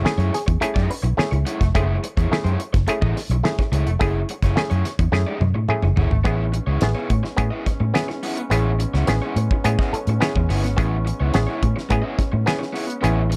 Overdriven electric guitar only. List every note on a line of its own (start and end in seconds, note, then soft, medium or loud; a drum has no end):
0.04 muted overdriven electric guitar stroke soft
0.18 0.32 A3 medium
0.18 0.32 E4 medium
0.18 0.33 G#4 medium
0.18 0.34 C#5 medium
0.33 muted overdriven electric guitar stroke soft
0.47 muted overdriven electric guitar stroke soft
0.61 muted overdriven electric guitar stroke soft
0.74 0.88 A3 medium
0.74 0.89 E4 medium
0.74 0.90 G#4 medium
0.74 0.91 D#5 medium
0.89 muted overdriven electric guitar stroke soft
1.03 muted overdriven electric guitar stroke soft
1.32 muted overdriven electric guitar stroke medium
1.46 1.63 A3 medium
1.46 1.61 E4 loud
1.46 1.61 G#4 medium
1.46 1.60 C#5 loud
1.61 muted overdriven electric guitar stroke soft
1.75 1.95 A3 medium
1.75 1.95 E4 medium
1.75 1.96 G#4 medium
1.75 1.96 C#5 medium
2.03 muted overdriven electric guitar stroke soft
2.17 2.29 A3 medium
2.17 2.30 E4 medium
2.17 2.31 G#4 medium
2.17 2.31 C#5 medium
2.31 muted overdriven electric guitar stroke soft
2.44 2.58 A3 medium
2.44 2.58 E4 medium
2.44 2.59 G#4 medium
2.44 2.59 C#5 medium
2.59 muted overdriven electric guitar stroke soft
2.73 muted overdriven electric guitar stroke soft
2.87 muted overdriven electric guitar stroke soft
3.02 3.15 A3 medium
3.02 3.15 E4 medium
3.02 3.16 G#4 medium
3.02 3.17 D#5 medium
3.16 muted overdriven electric guitar stroke soft
3.31 muted overdriven electric guitar stroke soft
3.59 muted overdriven electric guitar stroke soft
3.72 3.90 A3 medium
3.72 3.87 E4 medium
3.72 3.87 G#4 medium
3.72 3.86 C#5 medium
3.87 muted overdriven electric guitar stroke soft
4.01 4.18 A3 medium
4.01 4.18 E4 medium
4.01 4.19 G#4 medium
4.01 4.19 C#5 medium
4.30 muted overdriven electric guitar stroke soft
4.44 4.55 A3 medium
4.44 4.56 E4 soft
4.44 4.57 G#4 medium
4.44 4.57 C#5 medium
4.56 muted overdriven electric guitar stroke soft
4.70 4.85 A3 medium
4.70 4.85 E4 medium
4.70 4.86 G#4 medium
4.70 4.86 C#5 medium
4.86 muted overdriven electric guitar stroke soft
5.00 muted overdriven electric guitar stroke soft
5.13 muted overdriven electric guitar stroke soft
5.27 5.40 A3 medium
5.27 5.40 E4 medium
5.27 5.41 G#4 medium
5.27 5.42 D#5 medium
5.41 muted overdriven electric guitar stroke soft
5.55 muted overdriven electric guitar stroke soft
5.83 muted overdriven electric guitar stroke medium
5.96 6.14 A3 medium
5.96 6.11 E4 medium
5.96 6.10 G#4 medium
5.96 6.10 C#5 medium
6.11 muted overdriven electric guitar stroke soft
6.24 6.42 B3 medium
6.24 6.43 E4 medium
6.24 6.43 G#4 medium
6.24 6.43 C#5 medium
6.53 muted overdriven electric guitar stroke soft
6.67 6.81 B3 soft
6.67 6.82 E4 medium
6.67 6.81 G#4 medium
6.67 6.81 C#5 medium
6.82 muted overdriven electric guitar stroke soft
6.95 7.09 B3 medium
6.95 7.10 E4 medium
6.95 7.10 G#4 medium
6.95 7.10 C#5 medium
7.10 muted overdriven electric guitar stroke soft
7.23 muted overdriven electric guitar stroke medium
7.38 muted overdriven electric guitar stroke soft
7.51 7.64 B3 medium
7.51 7.64 E4 medium
7.51 7.65 G#4 medium
7.51 7.67 D#5 medium
7.65 muted overdriven electric guitar stroke soft
7.80 muted overdriven electric guitar stroke soft
8.09 muted overdriven electric guitar stroke soft
8.23 8.41 B3 medium
8.23 8.37 E4 medium
8.23 8.37 G#4 medium
8.23 8.36 C#5 medium
8.37 muted overdriven electric guitar stroke soft
8.52 8.69 B3 medium
8.52 8.69 E4 medium
8.52 8.70 G#4 medium
8.52 8.70 C#5 medium
8.79 muted overdriven electric guitar stroke soft
8.94 9.07 B3 medium
8.94 9.08 E4 medium
8.94 9.08 G#4 medium
8.94 9.07 C#5 medium
9.08 muted overdriven electric guitar stroke soft
9.22 9.35 B3 medium
9.22 9.36 E4 medium
9.22 9.36 G#4 medium
9.22 9.37 C#5 medium
9.37 muted overdriven electric guitar stroke soft
9.52 muted overdriven electric guitar stroke soft
9.66 muted overdriven electric guitar stroke soft
9.79 9.93 B3 medium
9.79 9.94 E4 medium
9.79 9.94 G#4 medium
9.79 9.95 D#5 medium
9.94 muted overdriven electric guitar stroke soft
10.09 muted overdriven electric guitar stroke soft
10.37 muted overdriven electric guitar stroke medium
10.49 10.67 B3 medium
10.49 10.64 E4 medium
10.49 10.63 G#4 medium
10.49 10.63 C#5 medium
10.64 muted overdriven electric guitar stroke soft
10.77 10.94 B3 medium
10.77 10.95 E4 medium
10.77 10.95 G#4 medium
10.77 10.95 C#5 medium
11.05 muted overdriven electric guitar stroke soft
11.20 11.32 B3 medium
11.20 11.33 E4 medium
11.20 11.33 G#4 medium
11.20 11.33 C#5 medium
11.33 muted overdriven electric guitar stroke soft
11.47 11.61 B3 medium
11.47 11.62 E4 medium
11.47 11.63 G#4 medium
11.47 11.62 C#5 medium
11.63 muted overdriven electric guitar stroke soft
11.76 muted overdriven electric guitar stroke soft
11.89 muted overdriven electric guitar stroke soft
12.02 12.16 B3 medium
12.02 12.17 E4 medium
12.02 12.17 G#4 medium
12.02 12.18 D#5 medium
12.17 muted overdriven electric guitar stroke soft
12.32 muted overdriven electric guitar stroke soft
12.59 muted overdriven electric guitar stroke medium
12.73 12.91 B3 medium
12.73 12.87 E4 medium
12.73 12.87 G#4 medium
12.73 12.86 C#5 medium
12.87 muted overdriven electric guitar stroke soft
13.01 13.20 B3 medium
13.01 13.20 E4 medium
13.01 13.20 G#4 medium
13.01 13.20 C#5 medium
13.30 muted overdriven electric guitar stroke soft